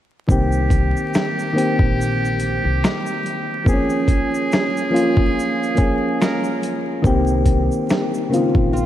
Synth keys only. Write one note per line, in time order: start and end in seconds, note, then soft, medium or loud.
0.28 1.10 D#3 medium
0.28 1.11 A#3 medium
0.28 1.11 C4 medium
0.32 1.12 G4 loud
1.53 2.65 D#3 medium
1.53 2.66 A#3 medium
1.53 2.67 C4 medium
1.58 2.68 G4 loud
3.64 4.47 F3 medium
3.64 4.48 A#3 medium
3.64 3.74 C4 medium
3.69 4.49 G#4 medium
3.73 4.52 C#4 medium
4.90 5.48 F3 medium
4.90 5.49 A#3 medium
4.90 5.49 C#4 medium
4.94 5.50 F4 loud
5.75 6.58 F3 medium
5.75 6.59 A#3 medium
5.75 6.60 C#4 medium
5.75 6.60 G#4 loud
7.02 7.85 D#3 loud
7.02 7.86 A#3 loud
7.02 7.87 C4 loud
7.07 7.87 G4 loud
8.29 8.38 C#3 medium
8.29 8.86 A#3 medium
8.29 8.86 C4 medium
8.34 8.86 D#3 medium
8.34 8.86 F4 loud